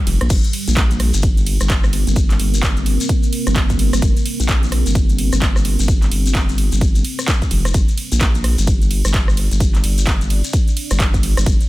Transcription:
Already playing: ambient pad G3 D4 G4
0.07 wobble bass F1, open hi-hat, ride
0.21 wobble bass A#1, cross-stick, closed hi-hat
0.30 wobble bass G1, ambient pad C4 A#4, kick, closed hi-hat, crash, ride, shekere
0.44 closed hi-hat, shekere
0.53 open hi-hat, ride
0.68 wobble bass A#1, closed hi-hat, shekere
0.77 kick, clap, closed hi-hat, ride, shekere
0.91 closed hi-hat, shekere
1.00 cross-stick, open hi-hat, ride
1.14 wobble bass G1, closed hi-hat, shekere
1.22 kick, closed hi-hat, ride, shekere
1.37 closed hi-hat, shekere
1.46 open hi-hat, ride
1.60 wobble bass G1, cross-stick, closed hi-hat, shekere
1.70 kick, clap, closed hi-hat, ride, shekere
1.84 cross-stick, shekere
1.93 open hi-hat, ride
2.07 wobble bass G1, closed hi-hat, shekere
2.16 kick, closed hi-hat, ride, shekere
2.30 clap, closed hi-hat, shekere
2.40 wobble bass G1, open hi-hat, ride
2.54 closed hi-hat, shekere
2.63 kick, clap, closed hi-hat, ride, shekere
2.77 wobble bass G1, closed hi-hat, shekere
2.86 open hi-hat, ride
3.00 closed hi-hat, shekere
3.09 kick, closed hi-hat, ride, shekere
3.23 closed hi-hat, shekere
3.33 open hi-hat, ride
3.47 wobble bass G1, cross-stick, closed hi-hat, shekere
3.56 kick, clap, closed hi-hat, ride, shekere
3.69 kick, closed hi-hat, shekere
3.79 open hi-hat, ride
3.93 wobble bass G1, cross-stick, closed hi-hat, shekere
4.02 wobble bass G1, kick, closed hi-hat, ride, shekere
4.17 closed hi-hat, shekere
4.26 open hi-hat, ride
4.40 wobble bass A#1, closed hi-hat, shekere
4.48 kick, clap, closed hi-hat, ride, shekere
4.63 closed hi-hat, shekere
4.72 cross-stick, open hi-hat, ride
4.86 wobble bass G1, closed hi-hat, shekere
4.95 kick, closed hi-hat, ride, shekere
5.09 closed hi-hat, shekere
5.18 open hi-hat, ride
5.32 wobble bass G1, cross-stick, closed hi-hat, shekere
5.42 kick, clap, closed hi-hat, ride, shekere
5.56 cross-stick, shekere
5.65 open hi-hat, ride
5.79 wobble bass G1, closed hi-hat, shekere
5.88 kick, closed hi-hat, ride, shekere
6.02 clap, closed hi-hat, shekere
6.12 wobble bass G1, open hi-hat, ride
6.26 closed hi-hat, shekere
6.35 kick, clap, closed hi-hat, ride, shekere
6.49 wobble bass G1, closed hi-hat, shekere
6.58 open hi-hat, ride
6.72 wobble bass G1, closed hi-hat, shekere
6.81 kick, closed hi-hat, ride, shekere
6.95 closed hi-hat, shekere
7.05 open hi-hat, ride
7.19 cross-stick, closed hi-hat, shekere
7.28 kick, clap, closed hi-hat, ride, shekere
7.42 kick, closed hi-hat, shekere
7.51 wobble bass F1, open hi-hat, ride
7.65 cross-stick, closed hi-hat, shekere
7.74 wobble bass G1, ambient pad D5, kick, closed hi-hat, ride, shekere
7.88 closed hi-hat, shekere
7.98 open hi-hat, ride
8.12 wobble bass A#1, closed hi-hat, shekere
8.20 kick, clap, closed hi-hat, ride, shekere
8.35 closed hi-hat, shekere
8.44 cross-stick, open hi-hat, ride
8.58 wobble bass G1, closed hi-hat, shekere
8.67 kick, closed hi-hat, ride, shekere
8.82 closed hi-hat, shekere
8.91 open hi-hat, ride
9.05 wobble bass G1, cross-stick, closed hi-hat, shekere
9.14 kick, clap, closed hi-hat, ride
9.28 cross-stick, shekere
9.37 open hi-hat, ride
9.51 wobble bass G1, closed hi-hat, shekere
9.60 kick, closed hi-hat, ride, shekere
9.74 clap, closed hi-hat, shekere
9.84 wobble bass G1, open hi-hat, ride
9.98 closed hi-hat, shekere
10.06 kick, clap, closed hi-hat, ride, shekere
10.21 wobble bass G1, closed hi-hat, shekere
10.30 open hi-hat, ride
10.44 closed hi-hat, shekere
10.53 kick, closed hi-hat, ride, shekere
10.68 closed hi-hat, shekere
10.77 open hi-hat, ride
10.90 wobble bass G1, cross-stick, closed hi-hat, shekere
11.00 kick, clap, closed hi-hat, ride, shekere
11.14 kick, closed hi-hat, shekere
11.23 open hi-hat, ride
11.37 wobble bass G1, cross-stick, closed hi-hat, shekere
11.46 wobble bass G1, kick, closed hi-hat, ride, shekere
11.61 closed hi-hat, shekere

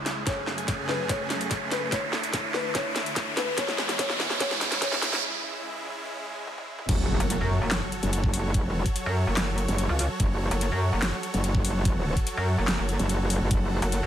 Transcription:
Already playing: supersaw synth C#2 C#3 G#3 E4, felt piano C#5, riser
0.06 snare, closed hi-hat
0.27 supersaw synth F#2 C#3 A3 G#4, felt piano C#5, kick, snare, closed hi-hat
0.47 snare
0.58 closed hi-hat
0.68 kick, snare, closed hi-hat
0.89 felt piano B4, snare
1.09 felt piano C#5, kick, snare, closed hi-hat
1.30 snare, closed hi-hat
1.41 closed hi-hat
1.51 kick, snare, closed hi-hat
1.71 felt piano B4, snare, closed hi-hat
1.92 supersaw synth D2 D3 E4, felt piano C#5, kick, snare, closed hi-hat
2.13 snare
2.23 closed hi-hat
2.33 kick, snare, closed hi-hat
2.54 felt piano B4, snare
2.75 felt piano C#5, kick, snare, closed hi-hat
2.96 snare, closed hi-hat
3.06 closed hi-hat
3.16 kick, snare, closed hi-hat
3.37 felt piano B4, snare, closed hi-hat
3.58 supersaw synth E2 B2 G#3 E4, felt piano C#5, kick, snare, closed hi-hat
3.68 snare
3.78 snare
3.89 snare, closed hi-hat
3.99 felt piano C#5, kick, snare, closed hi-hat
4.10 snare
4.20 snare
4.30 snare
4.40 felt piano C#5, kick, snare, closed hi-hat
4.51 snare
4.61 snare, closed hi-hat
4.72 snare, closed hi-hat
4.82 felt piano C#5, kick, snare, closed hi-hat
4.92 snare
5.02 snare, closed hi-hat
5.13 snare
5.23 supersaw synth C#2 C#3 G#3
6.47 high tom
6.58 high tom
6.79 mid tom
6.89 wobble bass F#1, supersaw synth F#3 F#4 A4 C#5, kick, closed hi-hat, crash, impact
7.20 wobble bass F#1, closed hi-hat
7.30 closed hi-hat
7.41 wobble bass F#2
7.62 wobble bass F#1
7.72 snare, clap, closed hi-hat
7.92 closed hi-hat
8.03 wobble bass F#1, closed hi-hat
8.13 closed hi-hat
8.24 kick
8.34 open hi-hat
8.54 kick, closed hi-hat
8.60 wobble bass F1
8.86 kick, closed hi-hat
8.96 closed hi-hat
9.06 wobble bass F#2
9.27 wobble bass F#1
9.37 snare, clap, closed hi-hat
9.58 closed hi-hat
9.68 wobble bass F#1, closed hi-hat
9.78 closed hi-hat
9.89 wobble bass C#2
9.99 open hi-hat
10.20 wobble bass F#1, kick, closed hi-hat
10.51 wobble bass F#1, closed hi-hat
10.61 closed hi-hat
10.72 wobble bass F#2
10.93 wobble bass F#1
11.03 snare, clap, closed hi-hat
11.23 closed hi-hat
11.34 wobble bass F#1, closed hi-hat
11.44 closed hi-hat
11.55 kick
11.65 open hi-hat
11.85 kick, closed hi-hat
12.17 kick, closed hi-hat
12.27 closed hi-hat
12.37 wobble bass F#2
12.58 wobble bass F#1
12.68 snare, clap, closed hi-hat
12.79 wobble bass F#1
12.89 closed hi-hat
12.99 wobble bass F#1, closed hi-hat
13.09 closed hi-hat
13.30 open hi-hat
13.41 wobble bass F#1
13.51 wobble bass F#1, supersaw synth F#5, kick, closed hi-hat
13.82 wobble bass F#1, closed hi-hat
13.92 closed hi-hat
14.03 wobble bass F#2

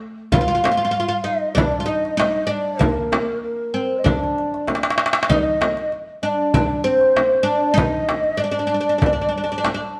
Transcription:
0.32 oud F4, ney F5, frame drum, darbuka dum
0.41 oud F4
0.48 oud F4
0.55 oud F4
0.64 oud F4, darbuka tek, frame drum
0.71 oud F4
0.77 oud F4
0.81 oud F4, darbuka ka
0.91 oud F4
0.97 oud F4, darbuka ka
1.08 oud F4
1.24 oud D#4, ney D#5
1.55 oud D4, ney D5, frame drum, darbuka dum
1.80 oud F4
1.86 oud D#4, ney D#5
2.05 darbuka ka
2.17 oud D#4, ney D#5, darbuka tek, frame drum
2.43 oud D4, ney D#5
2.50 ney D5
2.79 oud A#3, ney A#4, darbuka dum, frame drum
3.12 darbuka tek, frame drum
3.42 ney A#4
3.74 oud C4
3.98 ney D#5
4.04 oud D4, ney D5, frame drum, darbuka dum
4.23 darbuka ka
4.38 darbuka ka
4.54 darbuka ka
4.67 darbuka tek, frame drum
4.75 darbuka ka
4.83 darbuka tek
4.90 darbuka ka
4.98 darbuka tek
5.06 darbuka ka
5.13 darbuka tek
5.23 darbuka ka
5.29 oud D#4, ney D#5, frame drum, darbuka dum
5.36 ney D5
5.42 ney D#5
5.61 darbuka tek, frame drum
5.77 darbuka ka
5.92 darbuka ka
6.22 oud D4, ney D#5
6.26 ney D5
6.54 oud D4, ney D5, frame drum, darbuka dum
6.84 oud C4, ney C5
7.01 darbuka ka
7.16 darbuka tek, frame drum
7.43 oud D4, ney D5
7.74 oud D#4, ney D#5, darbuka dum, frame drum
8.09 darbuka tek, frame drum
8.23 darbuka ka
8.37 oud D4, ney D5, darbuka ka
8.44 oud D4
8.51 oud D4
8.59 oud D4
8.67 oud D4
8.74 oud D4
8.81 oud D4
8.89 oud D4
8.98 oud D4, darbuka dum, frame drum
9.06 oud D4
9.13 oud D4
9.21 oud D4
9.29 oud D4
9.38 oud D4
9.44 oud D4
9.49 oud D4, darbuka ka
9.58 oud D4
9.64 oud D4, darbuka tek, frame drum
9.74 oud D4

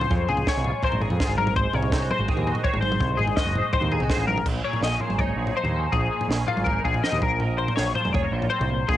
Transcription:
Already playing: clean electric guitar G#3 C5
0.01 floor tom, mid tom
0.09 picked electric bass F2, clean electric guitar C#3, kick, floor tom
0.29 picked electric bass C#2, clean electric guitar G#4, floor tom
0.37 floor tom
0.47 clean electric guitar G#3 C#5, kick, snare
0.57 picked electric bass C2
0.64 clean electric guitar F4, floor tom
0.82 clean electric guitar A#4 C5, kick, floor tom
0.92 picked electric bass G#1, floor tom
1.01 clean electric guitar G#2 G#4, floor tom
1.10 picked electric bass F2, floor tom
1.20 clean electric guitar F4, kick, snare
1.28 picked electric bass G#1
1.37 picked electric bass G#1, clean electric guitar G#2 A#4, mid tom
1.47 floor tom, mid tom
1.56 clean electric guitar C5, kick, floor tom
1.73 picked electric bass C2, clean electric guitar G#3 C#5, floor tom
1.83 floor tom
1.92 clean electric guitar D#4, kick, snare
2.01 clean electric guitar F#4
2.11 clean electric guitar C5, floor tom, mid tom
2.19 picked electric bass G#1
2.28 clean electric guitar D#3 G#4, kick, floor tom
2.37 picked electric bass D#2, floor tom
2.47 clean electric guitar F#4, floor tom
2.55 floor tom
2.64 clean electric guitar C5 C#5, kick
2.74 picked electric bass G#1, floor tom
2.81 clean electric guitar G#2 C5, mid tom
2.92 floor tom, mid tom
3.00 picked electric bass C2, kick, floor tom
3.17 picked electric bass G#1, clean electric guitar G#3 G#4, floor tom
3.27 floor tom
3.37 clean electric guitar F#4 D#5, kick, snare
3.45 picked electric bass F#1
3.55 clean electric guitar C5, floor tom
3.73 clean electric guitar D#3 C5, kick, floor tom
3.81 picked electric bass D#2, floor tom
3.92 clean electric guitar D#4 G#4, floor tom
4.00 picked electric bass C2, clean electric guitar F#4, floor tom
4.10 clean electric guitar C5, kick, snare
4.17 picked electric bass A1
4.27 clean electric guitar G#2 A#4, mid tom
4.38 floor tom, mid tom
4.46 picked electric bass A#1, clean electric guitar A#2, kick, floor tom, crash
4.64 clean electric guitar G#4 C#5
4.73 floor tom
4.81 picked electric bass A#1, clean electric guitar C#4 D#5, snare
5.00 clean electric guitar A#3 G#4 C5, floor tom
5.09 picked electric bass G#1, mid tom
5.19 clean electric guitar D#4 C#5, kick, floor tom, mid tom
5.36 picked electric bass A#1, clean electric guitar G#4
5.47 floor tom
5.55 clean electric guitar F3 D#4 C5
5.64 picked electric bass D#2, floor tom
5.75 clean electric guitar C#4
5.92 picked electric bass A#1, clean electric guitar A#2 G#4, kick, floor tom
6.11 clean electric guitar G#4
6.21 floor tom
6.28 picked electric bass A#1, clean electric guitar C#4, snare
6.47 clean electric guitar A#3 F4 G#4, floor tom
6.56 picked electric bass G#1, mid tom
6.64 clean electric guitar D#4 A#4, kick, floor tom, mid tom
6.85 picked electric bass A#1, clean electric guitar G#4, kick
6.94 floor tom
7.03 clean electric guitar F3 D#4 D#5, snare
7.12 picked electric bass D#2, floor tom
7.22 picked electric bass A#1, clean electric guitar A#2 A#4, kick, mid tom
7.40 clean electric guitar A#4, floor tom
7.58 clean electric guitar C5
7.68 floor tom
7.76 picked electric bass A#1, clean electric guitar F#3 G#4 C#5, snare
7.95 clean electric guitar F4 C5, floor tom
8.05 picked electric bass F1, mid tom
8.13 clean electric guitar G#4 C#5, kick, floor tom, mid tom
8.23 clean electric guitar A#4
8.32 picked electric bass A#1, clean electric guitar A#2 F4
8.42 floor tom
8.50 clean electric guitar C4 C5
8.60 picked electric bass C2, floor tom
8.69 clean electric guitar A#2
8.88 picked electric bass A#1, clean electric guitar G#4, kick, floor tom

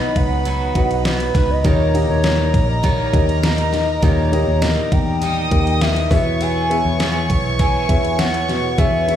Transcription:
Already playing: steel-string acoustic guitar F#3 B3 D#4 F#4, upright piano B3 D#4 F#4 C#5 D#5, violin section B4 B5, soft synth lead D#5
0.16 fingered electric bass C#2, soft synth lead F#5, kick, ride
0.45 steel-string acoustic guitar B2 F#3 B3 D#4 F#4, ride
0.75 fingered electric bass B1, upright piano B3 D#4 F#4 D#5, kick, ride
0.91 ride
1.05 steel-string acoustic guitar F#3 B3 D#4 F#4, soft synth lead B4, snare, ride
1.20 ride
1.34 fingered electric bass C#2, steel-string acoustic guitar B3 D#4 F#4, kick, snare, ride
1.51 soft synth lead D#5
1.64 fingered electric bass D#2, upright piano A#2 A#3 D#4 G4 D#5, steel-string acoustic guitar D#3 G3 A#3 D#4 G4, violin section A#4 A#5, soft synth lead C#5, kick, ride
1.94 upright piano A#3 D#4 G4 D#5, steel-string acoustic guitar A#3 D#4 G4, ride
2.09 fingered electric bass D#2, soft synth lead C#5
2.23 steel-string acoustic guitar G3 A#3 D#4 G4, snare, ride
2.54 fingered electric bass A#1, kick, ride
2.69 soft synth lead D#5
2.83 steel-string acoustic guitar D#3 G3 A#3 D#4 G4, soft synth lead C#5, kick, ride
3.13 fingered electric bass D#2, upright piano A#3 D#4 G4 D#5, kick, ride
3.29 ride
3.43 steel-string acoustic guitar G3 A#3 D#4 G4, soft synth lead D#5, snare, ride
3.58 ride
3.72 steel-string acoustic guitar A#3 D#4 G4, snare, ride
4.02 fingered electric bass D#2, upright piano A#2 A#3 D#4 G4 D#5, steel-string acoustic guitar D#3 G3 A#3 D#4 G4, soft synth lead C#5, kick, ride
4.32 upright piano A#3 D#4 G4 D#5, steel-string acoustic guitar A#3 D#4 G4, ride
4.47 fingered electric bass D#2
4.62 steel-string acoustic guitar G3 A#3 D#4 G4, soft synth lead D#5, snare, ride
4.92 fingered electric bass E2, soft synth lead G5, kick, ride
5.22 steel-string acoustic guitar D#3 G3 A#3 D#4 G4, violin section D#5 D#6, ride
5.51 fingered electric bass D#2, upright piano A#3 D#4 G4 A#4, kick, ride
5.67 ride
5.81 steel-string acoustic guitar G3 A#3 D#4 G4, soft synth lead E5, snare, ride
5.96 ride
6.10 fingered electric bass E2, upright piano B2 B3 E4 G#4 E5, steel-string acoustic guitar B3 E4 G#4, violin section C#5 C#6, kick, snare, open hi-hat, ride
6.41 steel-string acoustic guitar E3 B3 E4 G#4, soft synth lead G#5, ride
6.70 upright piano B3 E4 G#4 E5, steel-string acoustic guitar B3 E4 G#4, ride
6.85 fingered electric bass E2
7.00 steel-string acoustic guitar E3 B3 E4 G#4, snare, ride
7.30 fingered electric bass B1, kick, ride
7.59 steel-string acoustic guitar E3 B3 E4 G#4, soft synth lead G#5, kick, ride
7.88 fingered electric bass E2, upright piano B3 E4 G#4 E5, kick, ride
8.05 ride
8.19 steel-string acoustic guitar E3 B3 E4 G#4, soft synth lead F#5, snare, ride
8.34 ride
8.48 upright piano B2, snare, ride
8.78 fingered electric bass E2, steel-string acoustic guitar E3 B3 E4 G#4, upright piano B3 E4 G#4 E5, soft synth lead E5, kick, ride
9.07 upright piano B3 E4 G#4 E5, steel-string acoustic guitar B3 E4 G#4, ride

